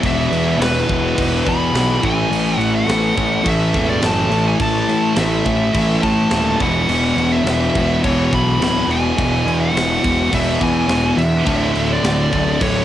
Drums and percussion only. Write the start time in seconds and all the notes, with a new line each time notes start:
0.03 kick, crash
0.33 crash
0.62 snare, crash
0.89 kick, crash
1.18 kick, crash
1.46 kick, crash
1.75 snare, crash
2.03 kick, crash
2.33 crash
2.61 crash
2.89 snare, crash
3.18 kick, crash
3.46 kick, crash
3.74 kick, crash
4.02 snare, crash
4.32 crash
4.60 kick, crash
4.89 crash
5.16 snare, crash
5.45 kick, crash
5.74 kick, crash
6.03 kick, crash
6.31 snare, crash
6.60 kick, crash
6.89 crash
7.18 crash
7.47 snare, crash
7.75 kick, crash
8.04 kick, crash
8.33 kick, crash
8.62 snare, crash
8.91 crash
9.18 kick, crash
9.48 crash
9.77 snare, crash
10.04 kick, crash
10.33 kick, crash
10.61 kick, crash
10.89 snare, crash
11.18 crash
11.46 kick, crash
11.75 crash
12.04 snare, crash
12.33 kick, crash
12.61 kick, crash